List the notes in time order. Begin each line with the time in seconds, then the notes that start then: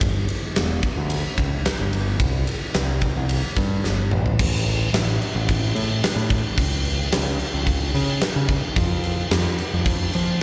0.01 G1, kick, ride
0.29 ride
0.56 E1, snare, ride
0.83 kick, ride
0.98 D2
1.10 ride
1.38 C#2, kick, ride
1.65 snare, ride
1.80 G1
1.93 ride
2.20 C2, kick, ride
2.47 ride
2.74 C2, snare, ride
3.01 kick, ride
3.16 C2
3.29 ride
3.56 G2, kick, ride
3.84 G1, snare
4.11 A1, mid tom
4.26 floor tom
4.39 A1, kick, crash
4.67 crash
4.93 A1, snare, crash
5.22 crash
5.35 A1
5.49 kick, crash
5.75 A2, crash
6.04 snare, crash
6.16 A2
6.30 kick, crash
6.58 C#2, kick, crash
6.85 crash
7.12 C#2, snare, crash
7.39 crash
7.54 C#2
7.67 kick, crash
7.95 C#3, crash
8.21 snare, crash
8.36 C#3
8.48 kick, crash
8.76 F2, kick, crash
9.04 crash
9.31 F2, snare, crash
9.58 crash
9.74 F2
9.86 kick, crash
10.13 F3, crash